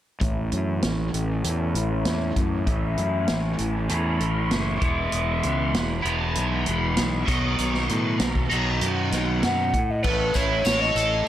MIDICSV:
0, 0, Header, 1, 5, 480
1, 0, Start_track
1, 0, Tempo, 614754
1, 164, Time_signature, 4, 2, 24, 8
1, 8807, End_track
2, 0, Start_track
2, 0, Title_t, "Flute"
2, 0, Program_c, 0, 73
2, 7365, Note_on_c, 0, 78, 79
2, 7736, Note_on_c, 0, 75, 70
2, 7748, Note_off_c, 0, 78, 0
2, 7834, Note_on_c, 0, 71, 77
2, 7845, Note_off_c, 0, 75, 0
2, 8091, Note_on_c, 0, 73, 78
2, 8103, Note_off_c, 0, 71, 0
2, 8442, Note_on_c, 0, 75, 83
2, 8453, Note_off_c, 0, 73, 0
2, 8800, Note_off_c, 0, 75, 0
2, 8807, End_track
3, 0, Start_track
3, 0, Title_t, "Overdriven electric guitar"
3, 0, Program_c, 1, 29
3, 156, Note_on_c, 1, 45, 70
3, 164, Note_on_c, 1, 52, 73
3, 170, Note_on_c, 1, 57, 73
3, 177, Note_on_c, 1, 61, 72
3, 183, Note_on_c, 1, 64, 77
3, 1106, Note_off_c, 1, 45, 0
3, 1113, Note_off_c, 1, 57, 0
3, 1117, Note_off_c, 1, 61, 0
3, 1117, Note_on_c, 1, 45, 61
3, 1119, Note_off_c, 1, 52, 0
3, 1122, Note_on_c, 1, 52, 66
3, 1129, Note_on_c, 1, 57, 67
3, 1138, Note_on_c, 1, 61, 65
3, 1140, Note_off_c, 1, 64, 0
3, 1143, Note_on_c, 1, 64, 74
3, 2067, Note_off_c, 1, 45, 0
3, 2073, Note_off_c, 1, 57, 0
3, 2078, Note_off_c, 1, 61, 0
3, 2078, Note_on_c, 1, 45, 65
3, 2084, Note_off_c, 1, 52, 0
3, 2088, Note_on_c, 1, 52, 74
3, 2094, Note_on_c, 1, 57, 72
3, 2102, Note_on_c, 1, 61, 75
3, 2105, Note_off_c, 1, 64, 0
3, 2108, Note_on_c, 1, 64, 82
3, 3023, Note_off_c, 1, 45, 0
3, 3031, Note_off_c, 1, 52, 0
3, 3032, Note_on_c, 1, 45, 65
3, 3036, Note_off_c, 1, 57, 0
3, 3040, Note_off_c, 1, 61, 0
3, 3040, Note_on_c, 1, 52, 64
3, 3043, Note_off_c, 1, 64, 0
3, 3049, Note_on_c, 1, 57, 70
3, 3056, Note_on_c, 1, 61, 70
3, 3061, Note_on_c, 1, 64, 68
3, 3736, Note_off_c, 1, 52, 0
3, 3745, Note_off_c, 1, 45, 0
3, 3745, Note_on_c, 1, 52, 81
3, 3754, Note_off_c, 1, 57, 0
3, 3757, Note_off_c, 1, 61, 0
3, 3760, Note_off_c, 1, 64, 0
3, 3760, Note_on_c, 1, 56, 72
3, 3768, Note_on_c, 1, 59, 82
3, 3777, Note_on_c, 1, 64, 85
3, 4692, Note_off_c, 1, 64, 0
3, 4702, Note_off_c, 1, 52, 0
3, 4702, Note_on_c, 1, 64, 74
3, 4709, Note_off_c, 1, 56, 0
3, 4709, Note_off_c, 1, 59, 0
3, 4712, Note_on_c, 1, 59, 72
3, 4725, Note_on_c, 1, 56, 70
3, 4732, Note_on_c, 1, 52, 60
3, 5660, Note_off_c, 1, 64, 0
3, 5669, Note_on_c, 1, 47, 70
3, 5672, Note_off_c, 1, 56, 0
3, 5674, Note_off_c, 1, 52, 0
3, 5677, Note_on_c, 1, 51, 73
3, 5684, Note_on_c, 1, 54, 81
3, 5687, Note_off_c, 1, 59, 0
3, 5690, Note_on_c, 1, 59, 77
3, 5699, Note_on_c, 1, 63, 76
3, 6623, Note_off_c, 1, 47, 0
3, 6625, Note_off_c, 1, 63, 0
3, 6627, Note_off_c, 1, 51, 0
3, 6631, Note_off_c, 1, 54, 0
3, 6634, Note_off_c, 1, 59, 0
3, 6634, Note_on_c, 1, 63, 76
3, 6646, Note_on_c, 1, 59, 72
3, 6656, Note_on_c, 1, 54, 73
3, 6661, Note_on_c, 1, 51, 64
3, 6667, Note_on_c, 1, 47, 65
3, 7586, Note_off_c, 1, 63, 0
3, 7591, Note_off_c, 1, 59, 0
3, 7596, Note_off_c, 1, 54, 0
3, 7599, Note_off_c, 1, 51, 0
3, 7602, Note_off_c, 1, 47, 0
3, 7844, Note_on_c, 1, 57, 61
3, 8076, Note_on_c, 1, 64, 62
3, 8320, Note_on_c, 1, 73, 62
3, 8559, Note_on_c, 1, 69, 59
3, 8793, Note_off_c, 1, 73, 0
3, 8807, Note_off_c, 1, 57, 0
3, 8807, Note_off_c, 1, 64, 0
3, 8807, Note_off_c, 1, 69, 0
3, 8807, End_track
4, 0, Start_track
4, 0, Title_t, "Fingered electric bass"
4, 0, Program_c, 2, 33
4, 165, Note_on_c, 2, 33, 70
4, 392, Note_off_c, 2, 33, 0
4, 410, Note_on_c, 2, 42, 71
4, 635, Note_off_c, 2, 42, 0
4, 651, Note_on_c, 2, 33, 73
4, 876, Note_off_c, 2, 33, 0
4, 888, Note_on_c, 2, 33, 71
4, 1114, Note_off_c, 2, 33, 0
4, 1125, Note_on_c, 2, 40, 76
4, 1353, Note_off_c, 2, 40, 0
4, 1362, Note_on_c, 2, 33, 67
4, 1591, Note_off_c, 2, 33, 0
4, 1604, Note_on_c, 2, 40, 76
4, 1832, Note_off_c, 2, 40, 0
4, 1844, Note_on_c, 2, 42, 75
4, 2072, Note_off_c, 2, 42, 0
4, 2083, Note_on_c, 2, 33, 76
4, 2312, Note_off_c, 2, 33, 0
4, 2323, Note_on_c, 2, 42, 76
4, 2552, Note_off_c, 2, 42, 0
4, 2567, Note_on_c, 2, 33, 78
4, 2794, Note_off_c, 2, 33, 0
4, 2806, Note_on_c, 2, 33, 81
4, 3034, Note_off_c, 2, 33, 0
4, 3044, Note_on_c, 2, 40, 78
4, 3273, Note_off_c, 2, 40, 0
4, 3285, Note_on_c, 2, 33, 71
4, 3514, Note_off_c, 2, 33, 0
4, 3528, Note_on_c, 2, 30, 76
4, 3755, Note_off_c, 2, 30, 0
4, 3760, Note_on_c, 2, 28, 78
4, 3991, Note_off_c, 2, 28, 0
4, 4002, Note_on_c, 2, 28, 76
4, 4232, Note_off_c, 2, 28, 0
4, 4245, Note_on_c, 2, 37, 80
4, 4473, Note_off_c, 2, 37, 0
4, 4482, Note_on_c, 2, 28, 79
4, 4712, Note_off_c, 2, 28, 0
4, 4722, Note_on_c, 2, 28, 77
4, 4952, Note_off_c, 2, 28, 0
4, 4969, Note_on_c, 2, 35, 80
4, 5196, Note_off_c, 2, 35, 0
4, 5206, Note_on_c, 2, 28, 73
4, 5434, Note_off_c, 2, 28, 0
4, 5453, Note_on_c, 2, 35, 75
4, 5678, Note_off_c, 2, 35, 0
4, 5685, Note_on_c, 2, 35, 78
4, 5913, Note_off_c, 2, 35, 0
4, 5928, Note_on_c, 2, 35, 73
4, 6155, Note_off_c, 2, 35, 0
4, 6167, Note_on_c, 2, 45, 79
4, 6395, Note_off_c, 2, 45, 0
4, 6404, Note_on_c, 2, 35, 83
4, 6633, Note_off_c, 2, 35, 0
4, 6644, Note_on_c, 2, 35, 76
4, 6873, Note_off_c, 2, 35, 0
4, 6884, Note_on_c, 2, 42, 78
4, 7113, Note_off_c, 2, 42, 0
4, 7121, Note_on_c, 2, 35, 76
4, 7351, Note_off_c, 2, 35, 0
4, 7368, Note_on_c, 2, 42, 80
4, 7595, Note_off_c, 2, 42, 0
4, 7601, Note_on_c, 2, 45, 82
4, 7831, Note_off_c, 2, 45, 0
4, 7841, Note_on_c, 2, 33, 80
4, 8045, Note_off_c, 2, 33, 0
4, 8083, Note_on_c, 2, 33, 82
4, 8286, Note_off_c, 2, 33, 0
4, 8320, Note_on_c, 2, 33, 82
4, 8524, Note_off_c, 2, 33, 0
4, 8552, Note_on_c, 2, 33, 78
4, 8759, Note_off_c, 2, 33, 0
4, 8807, End_track
5, 0, Start_track
5, 0, Title_t, "Drums"
5, 166, Note_on_c, 9, 36, 91
5, 167, Note_on_c, 9, 42, 70
5, 244, Note_off_c, 9, 36, 0
5, 245, Note_off_c, 9, 42, 0
5, 404, Note_on_c, 9, 42, 51
5, 482, Note_off_c, 9, 42, 0
5, 644, Note_on_c, 9, 42, 72
5, 646, Note_on_c, 9, 38, 92
5, 722, Note_off_c, 9, 42, 0
5, 724, Note_off_c, 9, 38, 0
5, 890, Note_on_c, 9, 42, 56
5, 968, Note_off_c, 9, 42, 0
5, 1127, Note_on_c, 9, 42, 80
5, 1205, Note_off_c, 9, 42, 0
5, 1367, Note_on_c, 9, 42, 55
5, 1445, Note_off_c, 9, 42, 0
5, 1602, Note_on_c, 9, 42, 67
5, 1604, Note_on_c, 9, 38, 81
5, 1680, Note_off_c, 9, 42, 0
5, 1682, Note_off_c, 9, 38, 0
5, 1845, Note_on_c, 9, 42, 53
5, 1846, Note_on_c, 9, 36, 74
5, 1923, Note_off_c, 9, 42, 0
5, 1924, Note_off_c, 9, 36, 0
5, 2085, Note_on_c, 9, 36, 93
5, 2085, Note_on_c, 9, 42, 67
5, 2163, Note_off_c, 9, 36, 0
5, 2163, Note_off_c, 9, 42, 0
5, 2323, Note_on_c, 9, 42, 46
5, 2401, Note_off_c, 9, 42, 0
5, 2558, Note_on_c, 9, 42, 66
5, 2560, Note_on_c, 9, 38, 90
5, 2636, Note_off_c, 9, 42, 0
5, 2638, Note_off_c, 9, 38, 0
5, 2799, Note_on_c, 9, 42, 54
5, 2877, Note_off_c, 9, 42, 0
5, 3040, Note_on_c, 9, 42, 69
5, 3118, Note_off_c, 9, 42, 0
5, 3283, Note_on_c, 9, 42, 48
5, 3361, Note_off_c, 9, 42, 0
5, 3521, Note_on_c, 9, 42, 64
5, 3523, Note_on_c, 9, 38, 95
5, 3599, Note_off_c, 9, 42, 0
5, 3601, Note_off_c, 9, 38, 0
5, 3760, Note_on_c, 9, 42, 54
5, 3762, Note_on_c, 9, 36, 91
5, 3838, Note_off_c, 9, 42, 0
5, 3840, Note_off_c, 9, 36, 0
5, 3998, Note_on_c, 9, 42, 71
5, 4076, Note_off_c, 9, 42, 0
5, 4241, Note_on_c, 9, 42, 48
5, 4320, Note_off_c, 9, 42, 0
5, 4485, Note_on_c, 9, 42, 71
5, 4488, Note_on_c, 9, 38, 98
5, 4563, Note_off_c, 9, 42, 0
5, 4566, Note_off_c, 9, 38, 0
5, 4726, Note_on_c, 9, 42, 56
5, 4805, Note_off_c, 9, 42, 0
5, 4961, Note_on_c, 9, 42, 81
5, 5039, Note_off_c, 9, 42, 0
5, 5201, Note_on_c, 9, 42, 55
5, 5279, Note_off_c, 9, 42, 0
5, 5440, Note_on_c, 9, 42, 76
5, 5442, Note_on_c, 9, 38, 95
5, 5518, Note_off_c, 9, 42, 0
5, 5520, Note_off_c, 9, 38, 0
5, 5683, Note_on_c, 9, 36, 92
5, 5685, Note_on_c, 9, 42, 60
5, 5761, Note_off_c, 9, 36, 0
5, 5763, Note_off_c, 9, 42, 0
5, 5922, Note_on_c, 9, 42, 72
5, 6000, Note_off_c, 9, 42, 0
5, 6044, Note_on_c, 9, 38, 27
5, 6122, Note_off_c, 9, 38, 0
5, 6163, Note_on_c, 9, 42, 52
5, 6241, Note_off_c, 9, 42, 0
5, 6399, Note_on_c, 9, 42, 77
5, 6401, Note_on_c, 9, 38, 97
5, 6477, Note_off_c, 9, 42, 0
5, 6479, Note_off_c, 9, 38, 0
5, 6523, Note_on_c, 9, 36, 70
5, 6601, Note_off_c, 9, 36, 0
5, 6646, Note_on_c, 9, 42, 53
5, 6724, Note_off_c, 9, 42, 0
5, 6880, Note_on_c, 9, 42, 71
5, 6958, Note_off_c, 9, 42, 0
5, 7123, Note_on_c, 9, 42, 53
5, 7126, Note_on_c, 9, 38, 31
5, 7201, Note_off_c, 9, 42, 0
5, 7204, Note_off_c, 9, 38, 0
5, 7361, Note_on_c, 9, 42, 62
5, 7363, Note_on_c, 9, 38, 91
5, 7439, Note_off_c, 9, 42, 0
5, 7441, Note_off_c, 9, 38, 0
5, 7603, Note_on_c, 9, 36, 77
5, 7603, Note_on_c, 9, 42, 52
5, 7681, Note_off_c, 9, 36, 0
5, 7681, Note_off_c, 9, 42, 0
5, 7836, Note_on_c, 9, 54, 27
5, 7841, Note_on_c, 9, 49, 78
5, 7843, Note_on_c, 9, 36, 86
5, 7914, Note_off_c, 9, 54, 0
5, 7919, Note_off_c, 9, 49, 0
5, 7921, Note_off_c, 9, 36, 0
5, 8074, Note_on_c, 9, 54, 69
5, 8084, Note_on_c, 9, 36, 67
5, 8088, Note_on_c, 9, 42, 53
5, 8152, Note_off_c, 9, 54, 0
5, 8162, Note_off_c, 9, 36, 0
5, 8166, Note_off_c, 9, 42, 0
5, 8314, Note_on_c, 9, 54, 85
5, 8326, Note_on_c, 9, 42, 73
5, 8328, Note_on_c, 9, 38, 93
5, 8392, Note_off_c, 9, 54, 0
5, 8404, Note_off_c, 9, 42, 0
5, 8406, Note_off_c, 9, 38, 0
5, 8452, Note_on_c, 9, 38, 30
5, 8530, Note_off_c, 9, 38, 0
5, 8558, Note_on_c, 9, 54, 69
5, 8569, Note_on_c, 9, 42, 58
5, 8636, Note_off_c, 9, 54, 0
5, 8647, Note_off_c, 9, 42, 0
5, 8807, End_track
0, 0, End_of_file